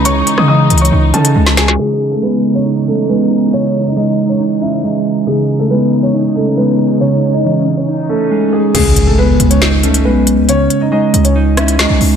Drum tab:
CC |------------------------------------------------|------------------------------------------------|------------------------------------------------|------------------------------------------------|
HH |x-----x-----------x-x-x-------x--x--------x-----|------x-----------x--x--------x--x--------x-----|x-----x-----------x--x--------x--x--------x-----|x-----x-----------x--x--------x--x--------x-----|
SD |---------r-----------------------------o--o--o--|------------------------------------------------|------------------------------------------------|------------------------------------------------|

CC |------------------------------------------------|x-----------------------------------------------|------------------------------------------------|
HH |------------------------------------------------|x-----x-----------x--x--------x--x--------x-----|x-----x-----------x--x--------x--x--------o-----|
SD |------------------------------------------------|------------------------o-----------------------|------------------------------r-----o-----------|